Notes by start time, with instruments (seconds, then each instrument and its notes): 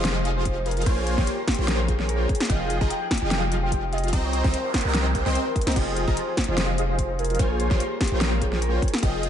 Already playing: 808-style bass F1, supersaw synth F3 F4 G#4 D#5 F5, harp D#4 F4 G#4 A#4 C5 D#5, soft synth lead C5
0.04 harp G4, snare, closed hi-hat
0.16 harp D#5
0.25 harp D#4, closed hi-hat
0.36 harp C5, soft synth lead C5
0.45 harp G4, kick, closed hi-hat
0.57 harp D#4
0.66 harp G#4, soft synth lead A#4, closed hi-hat
0.71 closed hi-hat
0.77 harp F4, closed hi-hat
0.82 closed hi-hat
0.86 808-style bass A#1, supersaw synth A#3 F4 C5 C#5 G#5, harp F4, kick, closed hi-hat
0.97 soft synth lead G#4, harp F5
1.06 harp C5, closed hi-hat
1.18 808-style bass A#1, supersaw synth A#3 F4 C5 C#5 C6, soft synth lead G4, harp G#4, kick, snare
1.27 harp A#4, closed hi-hat
1.38 harp C5
1.47 soft synth lead G4, harp C5, kick, snare, closed hi-hat
1.51 closed hi-hat
1.54 closed hi-hat
1.58 808-style bass A#1, supersaw synth A#3 F4 C5 C#5 G5, harp G#4
1.68 harp A#4, snare, closed hi-hat
1.79 harp F5
1.88 harp F4, soft synth lead G#4, kick, closed hi-hat
1.99 harp C#5, snare
2.09 harp A#4, closed hi-hat
2.20 harp F4
2.29 harp G#4, kick, closed hi-hat
2.35 closed hi-hat
2.40 harp F4, snare, closed hi-hat
2.45 closed hi-hat
2.49 808-style bass F1, supersaw synth F3 F4 G#4 D#5 G5, harp D#4, soft synth lead F5, kick, closed hi-hat
2.61 harp D#5
2.70 harp G#4, closed hi-hat
2.81 808-style bass F1, supersaw synth F3 F4 G#4 D#5 A#5, harp F4, kick
2.90 harp G4, soft synth lead G5, closed hi-hat
3.02 harp G#4
3.11 kick, snare, closed hi-hat
3.14 closed hi-hat
3.18 closed hi-hat
3.22 808-style bass F1, supersaw synth F3 F4 G#4 D#5 F5, harp F4, soft synth lead G5
3.31 harp G4, snare, closed hi-hat
3.42 harp D#5
3.52 harp D#4, closed hi-hat
3.63 harp C5, soft synth lead G5
3.72 harp G4, kick, closed hi-hat
3.83 harp D#4
3.92 harp G#4, soft synth lead D#5, closed hi-hat
3.98 closed hi-hat
4.03 harp F4, closed hi-hat
4.08 closed hi-hat
4.13 808-style bass C2, supersaw synth C4 C5 D#5 G5 A#5, harp D#4, kick, closed hi-hat, noise sweep
4.24 soft synth lead C#5, harp G5
4.33 harp C5, closed hi-hat
4.44 808-style bass C2, supersaw synth C4 C5 D#5 G5 A#5, harp G4, soft synth lead C5, kick, snare
4.54 harp A#4, closed hi-hat
4.65 harp C5
4.74 soft synth lead A#4, harp C5, kick, snare, closed hi-hat
4.78 closed hi-hat
4.81 closed hi-hat
4.85 808-style bass C2, supersaw synth C4 C5 D#5 G5 A#5, harp G4
4.94 harp A#4, snare, closed hi-hat
5.06 harp G5
5.15 harp G4, soft synth lead A#4, kick, closed hi-hat
5.26 808-style bass C2, supersaw synth C4 C5 D#5 G5 C6, harp A#4, snare
5.35 harp C5, closed hi-hat
5.46 harp C5
5.56 harp G4, kick, closed hi-hat
5.61 closed hi-hat
5.67 808-style bass C2, supersaw synth C4 C5 D#5 G5 A#5, harp C5, snare, closed hi-hat
5.72 closed hi-hat
5.76 808-style bass F1, supersaw synth F3 F4 G#4 D#5 G5, harp D#4, soft synth lead C5, kick, closed hi-hat, crash
5.87 harp D#5
5.96 harp G#4, closed hi-hat
6.08 808-style bass F1, supersaw synth F3 F4 G#4 D#5 A#5, harp F4, kick
6.17 harp G4, soft synth lead C5, closed hi-hat
6.28 harp G#4
6.37 harp G#4, kick, snare, closed hi-hat
6.41 closed hi-hat
6.44 closed hi-hat
6.48 808-style bass F1, supersaw synth F3 F4 G#4 D#5 F5, harp F4, soft synth lead C5
6.58 harp G4, snare, closed hi-hat
6.69 harp D#5
6.78 harp D#4, closed hi-hat
6.89 soft synth lead C5, harp C5
6.99 harp G4, kick, closed hi-hat
7.10 harp D#4
7.19 harp G#4, soft synth lead A#4, closed hi-hat
7.25 closed hi-hat
7.30 harp F4, closed hi-hat
7.35 closed hi-hat
7.39 808-style bass A#1, supersaw synth A#3 F4 C5 C#5 G#5, harp F4, kick, closed hi-hat
7.50 soft synth lead G#4, harp F5
7.60 harp C5, closed hi-hat
7.71 808-style bass A#1, supersaw synth A#3 F4 C5 C#5 C6, soft synth lead G4, harp G#4, kick, snare
7.80 harp A#4, closed hi-hat
7.91 harp C5
8.00 soft synth lead G4, kick, snare, closed hi-hat
8.04 closed hi-hat
8.08 closed hi-hat
8.12 808-style bass A#1, supersaw synth A#3 F4 C5 C#5 G5, harp G#4
8.21 harp A#4, snare, closed hi-hat
8.32 harp F5
8.41 harp F4, soft synth lead G#4, kick, closed hi-hat
8.52 harp C#5, snare
8.62 harp A#4, closed hi-hat
8.73 harp F4
8.82 harp G#4, kick, closed hi-hat
8.88 closed hi-hat
8.93 harp F4, snare, closed hi-hat
8.98 closed hi-hat
9.02 808-style bass F1, supersaw synth F3 F4 G#4 D#5 G5, harp D#4, soft synth lead D#5, kick, closed hi-hat
9.14 harp D#5
9.23 harp G#4, closed hi-hat